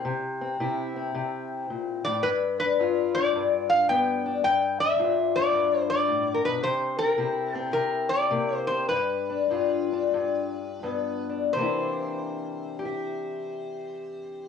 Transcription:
Already playing: steel-string acoustic guitar E4
0.05 steel-string acoustic guitar C3
0.41 steel-string acoustic guitar C4
0.60 steel-string acoustic guitar C3 E4
0.97 steel-string acoustic guitar C4
1.15 steel-string acoustic guitar C3
1.70 steel-string acoustic guitar A#2
2.05 steel-string acoustic guitar A2, resonator guitar played with a steel bar D5
2.23 steel-string acoustic guitar G2, resonator guitar played with a steel bar B4
2.60 steel-string acoustic guitar D4, resonator guitar played with a steel bar B4
2.79 steel-string acoustic guitar G2 F4
3.15 steel-string acoustic guitar D4, resonator guitar played with a steel bar D5
3.35 steel-string acoustic guitar G2
3.69 resonator guitar played with a steel bar F5
3.89 steel-string acoustic guitar G2 B3, resonator guitar played with a steel bar G5
4.26 steel-string acoustic guitar D4
4.44 steel-string acoustic guitar G2, resonator guitar played with a steel bar G5
4.80 steel-string acoustic guitar D4, resonator guitar played with a steel bar E5
4.99 steel-string acoustic guitar G2 F4
5.35 steel-string acoustic guitar D4, resonator guitar played with a steel bar D5
5.54 steel-string acoustic guitar G2
5.90 resonator guitar played with a steel bar D5
6.08 steel-string acoustic guitar A2
6.34 resonator guitar played with a steel bar A#4
6.44 steel-string acoustic guitar B2, resonator guitar played with a steel bar B4
6.63 steel-string acoustic guitar C3, resonator guitar played with a steel bar C5
6.99 steel-string acoustic guitar C4, resonator guitar played with a steel bar A#4
7.18 steel-string acoustic guitar C3 E4
7.52 steel-string acoustic guitar C4, resonator guitar played with a steel bar A4
7.73 steel-string acoustic guitar C3, resonator guitar played with a steel bar A#4
8.09 resonator guitar played with a steel bar D5
8.31 steel-string acoustic guitar C3 A#3
8.67 steel-string acoustic guitar C4, resonator guitar played with a steel bar C5
8.89 steel-string acoustic guitar G2, resonator guitar played with a steel bar B4
9.30 steel-string acoustic guitar D4
9.51 steel-string acoustic guitar G2 F4
9.93 steel-string acoustic guitar D4
10.14 steel-string acoustic guitar G2
10.83 steel-string acoustic guitar G2 B3
11.29 steel-string acoustic guitar D4
11.53 steel-string acoustic guitar C3 E3, resonator guitar played with a steel bar C5
11.58 steel-string acoustic guitar A#3 D4 E4
12.79 steel-string acoustic guitar G4
12.85 steel-string acoustic guitar E5

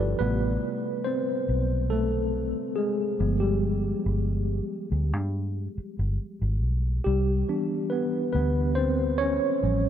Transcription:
Already playing: fingered electric bass G1, tine electric piano F3 G3 B3 D4 E4 F4 G4 A4
0.00 tine electric piano B4 D5
0.19 fingered electric bass A1, tine electric piano C3 G3 A3 B3 B4
1.04 tine electric piano C4 C5
1.49 fingered electric bass B1
1.90 tine electric piano A3 A4
2.76 tine electric piano G#3 G#4
3.19 fingered electric bass G1, tine electric piano F3 G#3 B3
3.40 tine electric piano G3 G4
4.06 fingered electric bass G1
4.92 fingered electric bass D2
5.13 fingered electric bass G2
5.78 muted fingered electric bass stroke
5.99 fingered electric bass G1
6.42 fingered electric bass G#1
6.63 fingered electric bass B1
7.04 fingered electric bass C2, tine electric piano G3 G4
7.48 tine electric piano E3 B3 D4
7.90 tine electric piano B3 B4
8.32 fingered electric bass D2, tine electric piano B3 B4
8.75 tine electric piano C4 C5
9.18 tine electric piano C#4 C#5
9.62 fingered electric bass A1, tine electric piano F3 G3 C#4

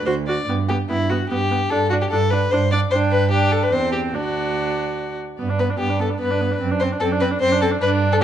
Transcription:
0.05 cello D2, viola F#4, violin C5
0.27 viola F#4, violin D5
0.48 cello G2, viola B3, violin G5
0.69 viola B3, violin G4 G5
0.89 cello G2, viola B3, violin E4 G5
1.09 viola B3, violin F#4 G5
1.29 cello G2, viola B3, violin G4 G5
1.50 viola B3, violin G5
1.70 cello G2, viola D4, violin A4 F#5
1.90 viola D4, violin F#4 F#5
2.02 violin G4
2.10 cello G2, viola D4, violin A4 F#5
2.30 viola D4, violin B4 F#5
2.51 cello G2, viola D4, violin C5 F#5
2.72 viola D4, violin D5 F#5
2.91 cello G2, viola D4, violin C5 G5
3.12 violin B4
3.31 viola D4, violin G4 G5
3.52 violin A4
3.63 violin B4
3.72 cello E2, viola C4, violin C5 G5
3.92 violin G4
4.13 cello D2, viola D4, violin F#4 D5
5.37 cello G2, viola B3, violin D5
5.48 viola D4, violin B4
5.58 viola B3, violin B4 D5
5.67 viola D4, violin B4
5.78 cello G2, viola B3, violin G4 D5
5.88 viola D4, violin B4
5.98 viola B3, violin A4 D5
6.08 viola D4, violin B4
6.17 cello G2, viola B3, violin B4 D5
6.28 viola D4, violin B4
6.38 viola B3, violin D5
6.48 viola D4, violin B4
6.59 cello F#2, viola C4, violin D5
6.69 viola D4, violin C5
6.79 viola C4, violin C5 D5
6.90 viola D4, violin C5
7.00 cello F#2, viola C4, violin A4 D5
7.11 viola D4, violin C5
7.20 viola C4, violin B4 D5
7.31 viola D4, violin C5
7.40 cello F#2, viola C4, violin C5 D5
7.51 viola D4, violin C5
7.61 viola C4, violin A4 D5
7.70 viola D4, violin C5
7.81 cello G2, viola D4, violin B4 D5
8.12 violin A4

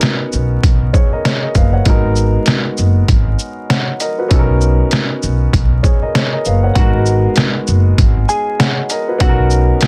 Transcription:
Already playing: grand piano B3 C#4 D#4 F#4 A#4
0.01 snare, closed hi-hat
0.33 upright bass B1, shaker
0.63 upright bass B1, kick, closed hi-hat
0.93 grand piano G#4 C#5, kick, shaker
1.12 grand piano A#4 D#5
1.25 grand piano G#4 C#5, snare, closed hi-hat
1.43 grand piano A#4 D#5
1.55 upright bass F#1, grand piano B4 F5, kick, closed hi-hat, shaker
1.73 grand piano C#5 F#5
1.85 upright bass G#1, grand piano G#3 B3 D#4 F#4, kick, closed hi-hat
1.89 grand piano A#4
2.16 shaker
2.46 snare, closed hi-hat
2.77 upright bass F#1, shaker
3.08 upright bass G#1, kick, closed hi-hat
3.39 shaker
3.70 grand piano C#5 F#5, snare, closed hi-hat
4.00 grand piano A#4 D#5, closed hi-hat, shaker
4.18 grand piano F#4 B4
4.28 upright bass B1, grand piano B3 C#4 D#4 F#4, kick, closed hi-hat
4.33 grand piano A4
4.39 grand piano A#4
4.61 shaker
4.91 snare, closed hi-hat
5.23 upright bass B1, shaker
5.53 upright bass B1, kick, closed hi-hat
5.83 grand piano G#4 C#5, kick, shaker
6.02 grand piano A#4 D#5
6.15 grand piano G#4 C#5, snare, closed hi-hat
6.33 grand piano A#4 D#5
6.45 upright bass F#1, grand piano B4 F5, shaker
6.63 grand piano C#5 F#5
6.75 upright bass G#1, grand piano G#3 B3 D#4 F#4, clean electric guitar F#4 F#5, kick, closed hi-hat
6.79 grand piano A#4
7.06 shaker
7.36 snare, closed hi-hat
7.67 upright bass F#1, shaker
7.98 upright bass G#1, kick, closed hi-hat
8.29 clean electric guitar G#4 G#5, shaker
8.59 grand piano C#5 F#5, snare, closed hi-hat
8.90 grand piano A#4 D#5, closed hi-hat, shaker
9.08 grand piano F#4 B4
9.19 upright bass B1, grand piano B3 C#4 D#4 F#4 A4, clean electric guitar F#4 F#5, kick, closed hi-hat
9.29 grand piano A#4
9.50 shaker
9.81 snare, closed hi-hat

